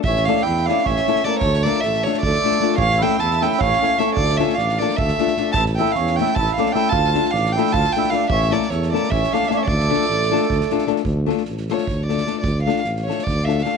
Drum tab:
SD |-ooooooo-oooo-|-ooooooo-o-oo-|-ooooooo-oo-o-|-ooooooo-oooo-|
BD |o-------o-----|o-------o-----|o-------o-----|o-------o-----|

SD |-ooooooo-oooo-|-ooooooo-oooo-|-ooooooo-oooo-|-ooooooo-ooooo|
BD |o-------o-----|o-------o-----|o-------o-----|o-------o-----|

SD |--oooooo--ooo-|--oooooo--ooo-|
BD |o-------o-----|o-------o-----|